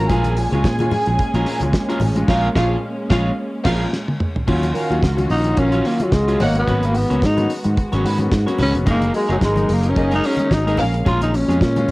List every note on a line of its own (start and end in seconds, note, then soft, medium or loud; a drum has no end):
0.09 0.46 A#1 loud
0.09 0.24 G#3 medium
0.09 4.45 G#3 medium
0.09 4.45 A#3 medium
0.09 0.35 C#4 medium
0.09 0.24 C#4 medium
0.09 4.44 C#4 medium
0.09 0.25 F4 loud
0.09 2.24 G#4 medium
0.09 0.35 G#4 medium
0.09 0.36 A#4 medium
0.09 2.25 G#5 medium
0.09 kick loud
0.09 closed hi-hat medium
0.09 muted conga soft
0.09 low conga medium
0.24 closed hi-hat soft
0.24 high conga medium
0.37 0.51 A#2 medium
0.37 0.51 F3 medium
0.37 muted clean electric guitar stroke soft
0.37 open hi-hat medium
0.52 0.62 C#2 loud
0.52 0.64 G#3 medium
0.52 0.64 C#4 medium
0.52 0.63 C#4 soft
0.52 0.64 F4 medium
0.52 0.64 G#4 medium
0.52 0.64 C#5 medium
0.52 closed hi-hat soft
0.64 0.88 A#2 medium
0.64 muted clean electric guitar stroke soft
0.64 kick loud
0.64 snare loud
0.64 closed hi-hat medium
0.79 0.92 G#3 medium
0.79 0.92 C#4 medium
0.79 0.92 F4 medium
0.79 muted clean electric guitar stroke soft
0.79 closed hi-hat soft
0.79 muted conga soft
0.79 high conga medium
0.91 open hi-hat medium
0.91 low conga loud
1.06 1.17 A#1 medium
1.06 1.19 A#2 medium
1.06 1.18 F3 medium
1.06 muted clean electric guitar stroke medium
1.06 closed hi-hat soft
1.19 muted clean electric guitar stroke soft
1.19 kick loud
1.19 closed hi-hat medium
1.34 1.44 A#1 loud
1.34 1.46 G#3 medium
1.34 1.46 C#4 medium
1.34 1.45 C#4 medium
1.34 1.46 F4 medium
1.34 1.46 G#4 medium
1.34 1.47 A#4 medium
1.34 closed hi-hat soft
1.46 1.61 A#2 medium
1.46 1.62 F3 medium
1.46 1.61 C#4 medium
1.46 1.61 G#4 medium
1.46 1.61 A#4 medium
1.46 open hi-hat medium
1.60 1.72 C#2 medium
1.60 1.73 G#3 medium
1.60 1.74 C#4 medium
1.60 1.74 F4 medium
1.60 muted clean electric guitar stroke medium
1.60 closed hi-hat soft
1.60 high conga medium
1.73 muted clean electric guitar stroke soft
1.73 kick loud
1.73 snare loud
1.73 closed hi-hat medium
1.88 2.00 G#3 medium
1.88 2.00 C#4 medium
1.88 2.00 F4 medium
1.88 2.01 G#4 medium
1.88 2.01 A#4 medium
1.88 closed hi-hat soft
2.00 2.25 A1 medium
2.00 2.16 A#2 medium
2.00 2.16 F3 medium
2.00 muted clean electric guitar stroke soft
2.00 open hi-hat medium
2.00 low conga medium
2.16 2.26 G#3 medium
2.16 2.26 C#4 medium
2.16 2.27 F4 medium
2.16 muted clean electric guitar stroke soft
2.16 closed hi-hat medium
2.28 2.48 A#1 medium
2.28 2.47 G#3 loud
2.28 2.47 C#4 medium
2.28 2.48 C#4 medium
2.28 2.47 F4 loud
2.28 2.48 G#4 medium
2.28 2.49 A#4 medium
2.28 2.47 F5 medium
2.28 kick loud
2.28 snare loud
2.28 crash medium
2.55 2.75 A#1 loud
2.55 2.75 A#2 loud
2.55 2.75 F3 loud
2.55 2.76 C#4 medium
2.55 2.75 F4 loud
2.55 2.76 G#4 medium
2.55 2.75 C#5 medium
2.55 2.74 F5 loud
2.55 kick loud
2.55 snare loud
3.09 3.30 A#1 loud
3.09 3.30 G#3 medium
3.09 3.30 C#4 medium
3.09 3.31 C#4 loud
3.09 3.29 F4 medium
3.09 3.30 F4 medium
3.09 3.30 G#4 loud
3.09 3.30 C#5 loud
3.09 3.29 F5 medium
3.09 kick loud
3.09 snare loud
3.64 3.85 A#1 loud
3.64 3.85 A#2 medium
3.64 3.85 F3 medium
3.64 3.85 C#4 loud
3.64 3.84 F4 loud
3.64 3.85 G#4 loud
3.64 3.86 A#4 loud
3.64 3.84 F5 loud
3.64 kick loud
3.64 snare loud
3.64 crash medium
3.93 snare medium
4.08 high tom medium
4.20 mid tom medium
4.36 floor tom medium
4.47 4.71 D#2 medium
4.47 6.38 D#3 medium
4.47 4.62 F#3 medium
4.47 4.73 F#3 medium
4.47 4.62 C#4 medium
4.47 4.73 C#4 medium
4.47 6.38 C#4 medium
4.47 4.62 F4 loud
4.47 6.38 F4 medium
4.47 4.74 F4 medium
4.47 6.38 F#4 medium
4.47 kick loud
4.47 crash medium
4.47 muted conga soft
4.47 low conga medium
4.63 closed hi-hat soft
4.63 high conga medium
4.73 4.90 D#3 medium
4.73 4.87 C#4 medium
4.73 4.87 A#4 medium
4.73 4.87 F5 medium
4.73 muted clean electric guitar stroke soft
4.73 open hi-hat medium
4.89 5.01 D#2 medium
4.89 5.01 F#3 medium
4.89 5.02 F#3 soft
4.89 5.02 C#4 medium
4.89 5.02 C#4 soft
4.89 5.02 F4 medium
4.89 5.02 F#4 medium
4.89 closed hi-hat soft
5.03 5.26 C#2 medium
5.03 muted clean electric guitar stroke soft
5.03 kick loud
5.03 snare loud
5.03 closed hi-hat medium
5.03 muted conga soft
5.17 5.29 F#3 medium
5.17 5.29 C#4 medium
5.17 5.29 F4 medium
5.17 muted clean electric guitar stroke soft
5.17 closed hi-hat soft
5.17 high conga medium
5.30 5.54 A#1 loud
5.30 5.61 D#4 loud
5.30 open hi-hat medium
5.44 5.57 D#3 medium
5.44 muted clean electric guitar stroke soft
5.44 closed hi-hat soft
5.56 5.81 A#1 medium
5.56 5.70 C#4 medium
5.56 5.88 C#4 loud
5.56 5.70 A#4 medium
5.56 5.70 F5 medium
5.56 muted clean electric guitar stroke soft
5.56 kick loud
5.56 closed hi-hat medium
5.56 muted conga soft
5.72 5.83 F#3 medium
5.72 5.85 F#3 medium
5.72 5.83 C#4 medium
5.72 5.85 C#4 medium
5.72 5.84 F4 medium
5.72 5.85 F4 medium
5.72 closed hi-hat soft
5.72 muted conga soft
5.84 6.00 D#3 soft
5.84 5.99 F#3 medium
5.84 6.04 A#3 medium
5.84 5.98 C#4 medium
5.84 5.97 F4 medium
5.84 open hi-hat medium
5.98 6.12 F#3 medium
5.98 6.12 C#4 medium
5.98 6.12 F4 medium
5.98 muted clean electric guitar stroke soft
5.98 closed hi-hat soft
5.98 high conga medium
6.03 6.15 F#3 medium
6.11 6.36 C#2 medium
6.11 6.45 G#3 medium
6.11 muted clean electric guitar stroke soft
6.11 kick loud
6.11 snare loud
6.11 closed hi-hat medium
6.11 muted conga soft
6.27 6.39 F#3 medium
6.27 6.43 F#3 medium
6.27 6.39 C#4 medium
6.27 6.38 C#4 medium
6.27 6.40 F4 medium
6.27 6.39 F4 medium
6.27 closed hi-hat soft
6.39 6.64 G#1 medium
6.39 6.55 G#2 medium
6.39 6.55 D#3 medium
6.39 8.85 G#3 medium
6.39 6.57 A#3 medium
6.39 8.85 B3 medium
6.39 6.63 D#4 medium
6.39 8.85 F#4 medium
6.39 6.63 C#5 medium
6.39 6.64 F#5 loud
6.39 muted clean electric guitar stroke soft
6.39 open hi-hat medium
6.39 low conga medium
6.55 6.65 F#3 medium
6.55 6.65 A#3 medium
6.55 6.65 B3 medium
6.55 6.87 B3 medium
6.55 6.66 C#4 medium
6.55 muted clean electric guitar stroke soft
6.55 closed hi-hat medium
6.67 7.04 G#1 loud
6.67 6.82 F#3 medium
6.67 6.82 A#3 medium
6.67 6.82 B3 medium
6.67 6.93 C#4 medium
6.67 6.82 C#4 loud
6.67 6.93 F#4 medium
6.67 6.94 B4 medium
6.67 kick medium
6.67 closed hi-hat medium
6.67 muted conga soft
6.67 low conga medium
6.83 6.99 A#3 medium
6.83 closed hi-hat soft
6.83 high conga medium
6.94 7.09 G#2 medium
6.94 7.09 D#3 medium
6.94 7.27 B3 medium
6.94 muted clean electric guitar stroke soft
6.94 open hi-hat medium
7.09 7.21 C#2 medium
7.09 7.21 F#3 medium
7.09 7.21 A#3 medium
7.09 7.21 B3 medium
7.09 7.22 C#4 medium
7.09 7.20 C#4 soft
7.09 7.21 F#4 soft
7.09 7.21 C#5 medium
7.09 closed hi-hat soft
7.21 7.46 G#2 medium
7.21 muted clean electric guitar stroke soft
7.21 kick loud
7.21 snare medium
7.21 closed hi-hat medium
7.21 muted conga soft
7.25 7.51 D#4 medium
7.37 7.49 F#3 medium
7.37 7.49 A#3 medium
7.37 7.49 B3 medium
7.37 7.49 C#4 medium
7.37 muted clean electric guitar stroke medium
7.37 closed hi-hat soft
7.37 muted conga soft
7.37 high conga medium
7.50 open hi-hat medium
7.64 7.76 G#2 medium
7.64 7.75 G#2 medium
7.64 7.76 D#3 medium
7.64 muted clean electric guitar stroke soft
7.64 closed hi-hat soft
7.77 muted clean electric guitar stroke soft
7.77 kick loud
7.77 closed hi-hat medium
7.77 muted conga soft
7.92 8.03 G#1 medium
7.92 8.04 F#3 medium
7.92 8.04 A#3 medium
7.92 8.04 B3 medium
7.92 8.04 C#4 medium
7.92 8.03 C#4 medium
7.92 8.04 F#4 medium
7.92 8.06 C#5 medium
7.92 closed hi-hat soft
7.92 muted conga soft
8.04 8.19 G#2 medium
8.04 8.28 G#2 loud
8.04 8.19 D#3 medium
8.04 8.19 C#4 medium
8.04 8.19 F#4 medium
8.04 8.19 B4 medium
8.04 open hi-hat medium
8.18 8.31 F#3 medium
8.18 8.31 A#3 medium
8.18 8.31 B3 medium
8.18 8.31 C#4 medium
8.18 muted clean electric guitar stroke soft
8.18 closed hi-hat soft
8.18 high conga medium
8.32 8.45 G#2 loud
8.32 muted clean electric guitar stroke soft
8.32 kick loud
8.32 snare loud
8.32 closed hi-hat medium
8.46 8.58 F#3 medium
8.46 8.58 A#3 medium
8.46 8.58 B3 medium
8.46 8.58 C#4 medium
8.46 8.58 C#4 soft
8.46 8.59 F#4 medium
8.46 8.58 C#5 medium
8.46 closed hi-hat soft
8.46 muted conga soft
8.59 8.73 C#2 medium
8.59 8.74 G#2 medium
8.59 8.74 D#3 medium
8.59 8.77 C#4 medium
8.59 8.74 C#4 medium
8.59 8.74 F#4 loud
8.59 8.73 B4 loud
8.59 open hi-hat medium
8.59 low conga medium
8.73 8.87 F1 medium
8.73 8.85 F#3 medium
8.73 8.84 A#3 medium
8.73 8.86 B3 medium
8.73 8.86 C#4 medium
8.73 muted clean electric guitar stroke soft
8.73 closed hi-hat medium
8.86 9.10 F#1 loud
8.86 10.77 F#3 medium
8.86 9.01 G#3 medium
8.86 9.01 A#3 medium
8.86 9.01 D#4 loud
8.86 9.12 D#4 medium
8.86 10.77 D#4 medium
8.86 9.13 G#4 medium
8.86 10.78 G#4 medium
8.86 10.77 A#4 medium
8.86 9.13 A#4 medium
8.86 kick loud
8.86 closed hi-hat medium
8.86 low conga medium
8.90 9.14 A#3 loud
9.02 closed hi-hat soft
9.02 muted conga soft
9.02 high conga medium
9.13 9.28 F#3 medium
9.13 9.29 G#3 medium
9.13 9.27 A#3 medium
9.13 9.27 G#4 medium
9.13 9.27 D#5 medium
9.13 muted clean electric guitar stroke soft
9.13 open hi-hat medium
9.29 9.40 F#1 medium
9.29 9.37 F#3 medium
9.29 9.41 G#3 medium
9.29 9.41 A#3 medium
9.29 9.41 D#4 medium
9.29 9.40 D#4 medium
9.29 9.40 G#4 medium
9.29 9.40 C#5 medium
9.29 closed hi-hat soft
9.41 9.65 G#1 medium
9.41 9.75 G#3 medium
9.41 muted clean electric guitar stroke soft
9.41 kick loud
9.41 snare medium
9.41 closed hi-hat medium
9.41 muted conga soft
9.56 9.68 G#3 medium
9.56 9.68 A#3 medium
9.56 9.68 D#4 medium
9.56 muted clean electric guitar stroke soft
9.56 closed hi-hat soft
9.56 muted conga soft
9.56 high conga medium
9.69 9.93 F#1 loud
9.69 open hi-hat medium
9.73 9.91 A#3 medium
9.83 9.96 F#3 medium
9.83 muted clean electric guitar stroke medium
9.83 closed hi-hat soft
9.89 10.14 C#4 medium
9.95 10.20 F#1 medium
9.95 10.09 A#3 medium
9.95 10.09 G#4 medium
9.95 10.09 D#5 medium
9.95 muted clean electric guitar stroke soft
9.95 kick loud
9.95 closed hi-hat medium
10.11 10.23 G#3 medium
10.11 10.24 A#3 medium
10.11 10.24 D#4 medium
10.11 10.23 D#4 medium
10.11 10.28 D#4 loud
10.11 10.24 G#4 medium
10.11 10.25 A#4 medium
10.11 closed hi-hat soft
10.11 muted conga soft
10.24 10.39 F#3 medium
10.24 10.55 C#4 loud
10.24 10.38 D#4 medium
10.24 10.39 G#4 medium
10.24 10.38 A#4 medium
10.24 open hi-hat medium
10.37 10.51 G#3 medium
10.37 10.51 A#3 medium
10.37 10.51 D#4 medium
10.37 muted clean electric guitar stroke soft
10.37 closed hi-hat soft
10.37 high conga medium
10.51 10.75 G#1 loud
10.51 10.66 F#3 medium
10.51 10.80 D#4 medium
10.51 muted clean electric guitar stroke soft
10.51 kick loud
10.51 snare loud
10.51 closed hi-hat medium
10.66 10.78 G#3 medium
10.66 10.78 A#3 medium
10.66 10.78 D#4 medium
10.66 10.79 D#4 medium
10.66 10.79 G#4 medium
10.66 10.80 A#4 medium
10.66 closed hi-hat soft
10.77 11.02 A#1 medium
10.77 11.91 G#3 medium
10.77 11.91 A#3 medium
10.77 11.02 C#4 loud
10.77 11.91 C#4 medium
10.77 10.85 C#4 soft
10.77 10.85 F4 soft
10.77 11.02 A#4 loud
10.77 11.02 F5 loud
10.77 muted clean electric guitar stroke soft
10.77 open hi-hat medium
10.77 low conga medium
10.94 muted clean electric guitar stroke soft
10.94 closed hi-hat medium
11.05 11.43 A#1 medium
11.05 11.21 G#3 medium
11.05 11.31 C#4 medium
11.05 11.21 C#4 medium
11.05 11.21 F4 loud
11.05 11.21 F4 medium
11.05 11.31 G#4 medium
11.05 11.32 A#4 medium
11.05 kick medium
11.05 closed hi-hat medium
11.05 muted conga soft
11.05 low conga medium
11.21 11.37 D#4 medium
11.21 closed hi-hat soft
11.21 muted conga soft
11.21 high conga medium
11.34 11.48 A#2 medium
11.34 11.48 F3 medium
11.34 11.91 C#4 medium
11.34 muted clean electric guitar stroke soft
11.34 open hi-hat medium
11.48 11.59 F2 medium
11.48 11.60 G#3 medium
11.48 11.60 C#4 medium
11.48 11.59 C#4 soft
11.48 11.61 F4 medium
11.48 11.60 G#4 soft
11.48 11.60 C#5 medium
11.48 closed hi-hat soft
11.61 11.84 A#2 medium
11.61 muted clean electric guitar stroke soft
11.61 kick loud
11.61 snare loud
11.61 closed hi-hat medium
11.61 muted conga soft
11.76 11.88 G#3 medium
11.76 11.88 C#4 medium
11.76 11.88 F4 medium
11.76 muted clean electric guitar stroke soft
11.76 closed hi-hat soft
11.76 high conga medium